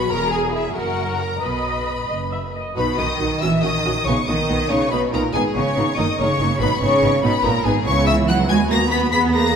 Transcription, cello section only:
0, 0, Header, 1, 2, 480
1, 0, Start_track
1, 0, Key_signature, 5, "major"
1, 0, Tempo, 440529
1, 115, Time_signature, 6, 3, 24, 8
1, 3961, Tempo, 422535
1, 10688, End_track
2, 0, Start_track
2, 0, Title_t, "Cello section"
2, 0, Program_c, 0, 48
2, 117, Note_on_c, 0, 40, 72
2, 700, Note_off_c, 0, 40, 0
2, 817, Note_on_c, 0, 42, 72
2, 1425, Note_off_c, 0, 42, 0
2, 1543, Note_on_c, 0, 47, 58
2, 2157, Note_off_c, 0, 47, 0
2, 2282, Note_on_c, 0, 42, 60
2, 2896, Note_off_c, 0, 42, 0
2, 3016, Note_on_c, 0, 47, 85
2, 3234, Note_off_c, 0, 47, 0
2, 3243, Note_on_c, 0, 51, 88
2, 3719, Note_on_c, 0, 52, 84
2, 3722, Note_off_c, 0, 51, 0
2, 3954, Note_on_c, 0, 51, 83
2, 3958, Note_off_c, 0, 52, 0
2, 4444, Note_off_c, 0, 51, 0
2, 4444, Note_on_c, 0, 49, 84
2, 4535, Note_off_c, 0, 49, 0
2, 4690, Note_on_c, 0, 51, 88
2, 5166, Note_off_c, 0, 51, 0
2, 5168, Note_on_c, 0, 49, 89
2, 5408, Note_on_c, 0, 47, 79
2, 5415, Note_off_c, 0, 49, 0
2, 5653, Note_on_c, 0, 46, 81
2, 5656, Note_off_c, 0, 47, 0
2, 5896, Note_on_c, 0, 44, 85
2, 5899, Note_off_c, 0, 46, 0
2, 5987, Note_off_c, 0, 44, 0
2, 6132, Note_on_c, 0, 49, 86
2, 6610, Note_off_c, 0, 49, 0
2, 6616, Note_on_c, 0, 51, 75
2, 6707, Note_off_c, 0, 51, 0
2, 6857, Note_on_c, 0, 49, 80
2, 7326, Note_off_c, 0, 49, 0
2, 7327, Note_on_c, 0, 47, 87
2, 7568, Note_on_c, 0, 49, 95
2, 7570, Note_off_c, 0, 47, 0
2, 8036, Note_off_c, 0, 49, 0
2, 8048, Note_on_c, 0, 47, 94
2, 8139, Note_off_c, 0, 47, 0
2, 8284, Note_on_c, 0, 46, 81
2, 8524, Note_off_c, 0, 46, 0
2, 8530, Note_on_c, 0, 44, 88
2, 8767, Note_off_c, 0, 44, 0
2, 8771, Note_on_c, 0, 49, 97
2, 9008, Note_on_c, 0, 52, 89
2, 9013, Note_off_c, 0, 49, 0
2, 9251, Note_off_c, 0, 52, 0
2, 9254, Note_on_c, 0, 54, 89
2, 9487, Note_on_c, 0, 56, 102
2, 9493, Note_off_c, 0, 54, 0
2, 9578, Note_off_c, 0, 56, 0
2, 9722, Note_on_c, 0, 58, 95
2, 9813, Note_off_c, 0, 58, 0
2, 9963, Note_on_c, 0, 59, 96
2, 10187, Note_off_c, 0, 59, 0
2, 10201, Note_on_c, 0, 59, 96
2, 10436, Note_off_c, 0, 59, 0
2, 10444, Note_on_c, 0, 58, 94
2, 10688, Note_off_c, 0, 58, 0
2, 10688, End_track
0, 0, End_of_file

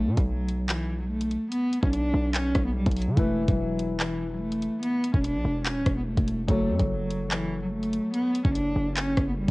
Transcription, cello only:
0, 0, Header, 1, 2, 480
1, 0, Start_track
1, 0, Tempo, 413793
1, 1761, Time_signature, 4, 2, 24, 8
1, 11030, End_track
2, 0, Start_track
2, 0, Title_t, "Cello"
2, 0, Program_c, 0, 42
2, 0, Note_on_c, 0, 57, 107
2, 179, Note_off_c, 0, 57, 0
2, 200, Note_on_c, 0, 55, 79
2, 293, Note_off_c, 0, 55, 0
2, 320, Note_on_c, 0, 54, 95
2, 772, Note_off_c, 0, 54, 0
2, 800, Note_on_c, 0, 52, 94
2, 1138, Note_off_c, 0, 52, 0
2, 1162, Note_on_c, 0, 54, 82
2, 1254, Note_off_c, 0, 54, 0
2, 1283, Note_on_c, 0, 57, 88
2, 1733, Note_off_c, 0, 57, 0
2, 1761, Note_on_c, 0, 59, 101
2, 2099, Note_off_c, 0, 59, 0
2, 2120, Note_on_c, 0, 61, 88
2, 2213, Note_off_c, 0, 61, 0
2, 2240, Note_on_c, 0, 62, 92
2, 2691, Note_off_c, 0, 62, 0
2, 2722, Note_on_c, 0, 61, 94
2, 3059, Note_off_c, 0, 61, 0
2, 3080, Note_on_c, 0, 59, 82
2, 3173, Note_off_c, 0, 59, 0
2, 3201, Note_on_c, 0, 55, 91
2, 3386, Note_off_c, 0, 55, 0
2, 3440, Note_on_c, 0, 54, 86
2, 3625, Note_off_c, 0, 54, 0
2, 3679, Note_on_c, 0, 57, 94
2, 4018, Note_off_c, 0, 57, 0
2, 4040, Note_on_c, 0, 55, 84
2, 4133, Note_off_c, 0, 55, 0
2, 4161, Note_on_c, 0, 54, 85
2, 4612, Note_off_c, 0, 54, 0
2, 4641, Note_on_c, 0, 52, 78
2, 4979, Note_off_c, 0, 52, 0
2, 5000, Note_on_c, 0, 54, 82
2, 5093, Note_off_c, 0, 54, 0
2, 5119, Note_on_c, 0, 57, 81
2, 5571, Note_off_c, 0, 57, 0
2, 5601, Note_on_c, 0, 59, 113
2, 5939, Note_off_c, 0, 59, 0
2, 5961, Note_on_c, 0, 61, 84
2, 6053, Note_off_c, 0, 61, 0
2, 6080, Note_on_c, 0, 62, 94
2, 6531, Note_off_c, 0, 62, 0
2, 6560, Note_on_c, 0, 61, 87
2, 6898, Note_off_c, 0, 61, 0
2, 6920, Note_on_c, 0, 59, 78
2, 7013, Note_off_c, 0, 59, 0
2, 7041, Note_on_c, 0, 57, 77
2, 7492, Note_off_c, 0, 57, 0
2, 7520, Note_on_c, 0, 57, 109
2, 7859, Note_off_c, 0, 57, 0
2, 7880, Note_on_c, 0, 55, 73
2, 7973, Note_off_c, 0, 55, 0
2, 7999, Note_on_c, 0, 54, 97
2, 8451, Note_off_c, 0, 54, 0
2, 8480, Note_on_c, 0, 52, 97
2, 8818, Note_off_c, 0, 52, 0
2, 8840, Note_on_c, 0, 54, 80
2, 8933, Note_off_c, 0, 54, 0
2, 8961, Note_on_c, 0, 57, 82
2, 9412, Note_off_c, 0, 57, 0
2, 9443, Note_on_c, 0, 59, 108
2, 9780, Note_off_c, 0, 59, 0
2, 9802, Note_on_c, 0, 61, 80
2, 9894, Note_off_c, 0, 61, 0
2, 9921, Note_on_c, 0, 62, 85
2, 10372, Note_off_c, 0, 62, 0
2, 10401, Note_on_c, 0, 61, 88
2, 10739, Note_off_c, 0, 61, 0
2, 10760, Note_on_c, 0, 59, 74
2, 10853, Note_off_c, 0, 59, 0
2, 10882, Note_on_c, 0, 55, 94
2, 11030, Note_off_c, 0, 55, 0
2, 11030, End_track
0, 0, End_of_file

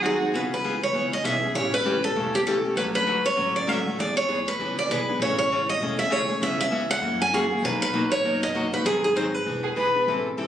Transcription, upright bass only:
0, 0, Header, 1, 2, 480
1, 0, Start_track
1, 0, Key_signature, 4, "minor"
1, 0, Tempo, 304569
1, 517, Time_signature, 4, 2, 24, 8
1, 16501, End_track
2, 0, Start_track
2, 0, Title_t, "Upright bass"
2, 0, Program_c, 0, 32
2, 0, Note_on_c, 0, 39, 69
2, 335, Note_off_c, 0, 39, 0
2, 501, Note_on_c, 0, 37, 77
2, 1276, Note_off_c, 0, 37, 0
2, 1459, Note_on_c, 0, 37, 74
2, 1875, Note_off_c, 0, 37, 0
2, 1942, Note_on_c, 0, 35, 75
2, 2356, Note_off_c, 0, 35, 0
2, 2435, Note_on_c, 0, 33, 81
2, 3203, Note_off_c, 0, 33, 0
2, 3392, Note_on_c, 0, 28, 76
2, 4161, Note_off_c, 0, 28, 0
2, 4347, Note_on_c, 0, 38, 89
2, 5118, Note_off_c, 0, 38, 0
2, 5313, Note_on_c, 0, 33, 74
2, 6081, Note_off_c, 0, 33, 0
2, 6281, Note_on_c, 0, 40, 84
2, 6662, Note_off_c, 0, 40, 0
2, 6759, Note_on_c, 0, 38, 74
2, 7164, Note_off_c, 0, 38, 0
2, 7238, Note_on_c, 0, 37, 79
2, 7644, Note_off_c, 0, 37, 0
2, 7708, Note_on_c, 0, 35, 75
2, 8117, Note_off_c, 0, 35, 0
2, 8186, Note_on_c, 0, 33, 86
2, 8956, Note_off_c, 0, 33, 0
2, 9146, Note_on_c, 0, 28, 74
2, 9916, Note_off_c, 0, 28, 0
2, 10101, Note_on_c, 0, 37, 84
2, 10873, Note_off_c, 0, 37, 0
2, 11051, Note_on_c, 0, 42, 86
2, 11827, Note_off_c, 0, 42, 0
2, 12014, Note_on_c, 0, 35, 89
2, 12789, Note_off_c, 0, 35, 0
2, 12981, Note_on_c, 0, 30, 78
2, 13753, Note_off_c, 0, 30, 0
2, 13948, Note_on_c, 0, 32, 89
2, 14718, Note_off_c, 0, 32, 0
2, 14913, Note_on_c, 0, 28, 79
2, 15681, Note_off_c, 0, 28, 0
2, 15874, Note_on_c, 0, 33, 75
2, 16339, Note_off_c, 0, 33, 0
2, 16359, Note_on_c, 0, 31, 73
2, 16501, Note_off_c, 0, 31, 0
2, 16501, End_track
0, 0, End_of_file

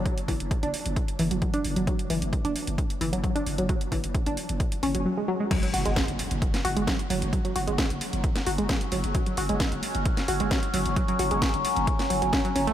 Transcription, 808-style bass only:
0, 0, Header, 1, 2, 480
1, 0, Start_track
1, 0, Tempo, 454545
1, 59, Time_signature, 4, 2, 24, 8
1, 13446, End_track
2, 0, Start_track
2, 0, Title_t, "808-style bass"
2, 0, Program_c, 0, 38
2, 298, Note_on_c, 0, 30, 96
2, 418, Note_off_c, 0, 30, 0
2, 425, Note_on_c, 0, 30, 78
2, 537, Note_off_c, 0, 30, 0
2, 665, Note_on_c, 0, 30, 80
2, 777, Note_off_c, 0, 30, 0
2, 904, Note_on_c, 0, 30, 81
2, 1017, Note_off_c, 0, 30, 0
2, 1259, Note_on_c, 0, 30, 94
2, 1377, Note_off_c, 0, 30, 0
2, 1383, Note_on_c, 0, 30, 83
2, 1496, Note_off_c, 0, 30, 0
2, 1739, Note_on_c, 0, 30, 97
2, 1858, Note_off_c, 0, 30, 0
2, 1864, Note_on_c, 0, 30, 83
2, 1977, Note_off_c, 0, 30, 0
2, 2218, Note_on_c, 0, 30, 99
2, 2336, Note_off_c, 0, 30, 0
2, 2342, Note_on_c, 0, 30, 80
2, 2456, Note_off_c, 0, 30, 0
2, 2581, Note_on_c, 0, 30, 81
2, 2696, Note_off_c, 0, 30, 0
2, 2822, Note_on_c, 0, 30, 84
2, 2936, Note_off_c, 0, 30, 0
2, 3177, Note_on_c, 0, 30, 98
2, 3296, Note_off_c, 0, 30, 0
2, 3302, Note_on_c, 0, 30, 84
2, 3416, Note_off_c, 0, 30, 0
2, 3657, Note_on_c, 0, 30, 99
2, 3775, Note_off_c, 0, 30, 0
2, 3782, Note_on_c, 0, 30, 85
2, 3896, Note_off_c, 0, 30, 0
2, 4138, Note_on_c, 0, 30, 97
2, 4258, Note_off_c, 0, 30, 0
2, 4264, Note_on_c, 0, 30, 79
2, 4377, Note_off_c, 0, 30, 0
2, 4505, Note_on_c, 0, 30, 82
2, 4617, Note_off_c, 0, 30, 0
2, 4745, Note_on_c, 0, 30, 80
2, 4857, Note_off_c, 0, 30, 0
2, 5099, Note_on_c, 0, 30, 98
2, 5218, Note_off_c, 0, 30, 0
2, 5225, Note_on_c, 0, 30, 81
2, 5337, Note_off_c, 0, 30, 0
2, 6058, Note_on_c, 0, 30, 98
2, 6178, Note_off_c, 0, 30, 0
2, 6184, Note_on_c, 0, 30, 81
2, 6297, Note_off_c, 0, 30, 0
2, 6423, Note_on_c, 0, 30, 80
2, 6537, Note_off_c, 0, 30, 0
2, 6663, Note_on_c, 0, 30, 82
2, 6777, Note_off_c, 0, 30, 0
2, 7019, Note_on_c, 0, 30, 99
2, 7138, Note_off_c, 0, 30, 0
2, 7144, Note_on_c, 0, 30, 83
2, 7257, Note_off_c, 0, 30, 0
2, 7498, Note_on_c, 0, 30, 100
2, 7618, Note_off_c, 0, 30, 0
2, 7624, Note_on_c, 0, 30, 84
2, 7737, Note_off_c, 0, 30, 0
2, 7979, Note_on_c, 0, 30, 98
2, 8098, Note_off_c, 0, 30, 0
2, 8104, Note_on_c, 0, 30, 81
2, 8217, Note_off_c, 0, 30, 0
2, 8346, Note_on_c, 0, 30, 83
2, 8458, Note_off_c, 0, 30, 0
2, 8584, Note_on_c, 0, 30, 80
2, 8697, Note_off_c, 0, 30, 0
2, 8939, Note_on_c, 0, 30, 98
2, 9058, Note_off_c, 0, 30, 0
2, 9064, Note_on_c, 0, 30, 81
2, 9177, Note_off_c, 0, 30, 0
2, 9420, Note_on_c, 0, 30, 97
2, 9537, Note_off_c, 0, 30, 0
2, 9544, Note_on_c, 0, 30, 81
2, 9657, Note_off_c, 0, 30, 0
2, 9898, Note_on_c, 0, 30, 96
2, 10018, Note_off_c, 0, 30, 0
2, 10024, Note_on_c, 0, 30, 81
2, 10137, Note_off_c, 0, 30, 0
2, 10265, Note_on_c, 0, 30, 80
2, 10377, Note_off_c, 0, 30, 0
2, 10505, Note_on_c, 0, 30, 81
2, 10617, Note_off_c, 0, 30, 0
2, 10859, Note_on_c, 0, 30, 96
2, 10978, Note_off_c, 0, 30, 0
2, 10984, Note_on_c, 0, 30, 81
2, 11097, Note_off_c, 0, 30, 0
2, 11338, Note_on_c, 0, 30, 99
2, 11458, Note_off_c, 0, 30, 0
2, 11464, Note_on_c, 0, 30, 85
2, 11577, Note_off_c, 0, 30, 0
2, 11819, Note_on_c, 0, 30, 97
2, 11937, Note_off_c, 0, 30, 0
2, 11943, Note_on_c, 0, 30, 83
2, 12056, Note_off_c, 0, 30, 0
2, 12184, Note_on_c, 0, 30, 82
2, 12297, Note_off_c, 0, 30, 0
2, 12423, Note_on_c, 0, 30, 80
2, 12536, Note_off_c, 0, 30, 0
2, 12778, Note_on_c, 0, 30, 98
2, 12898, Note_off_c, 0, 30, 0
2, 12904, Note_on_c, 0, 30, 83
2, 13017, Note_off_c, 0, 30, 0
2, 13259, Note_on_c, 0, 30, 96
2, 13378, Note_off_c, 0, 30, 0
2, 13384, Note_on_c, 0, 30, 82
2, 13446, Note_off_c, 0, 30, 0
2, 13446, End_track
0, 0, End_of_file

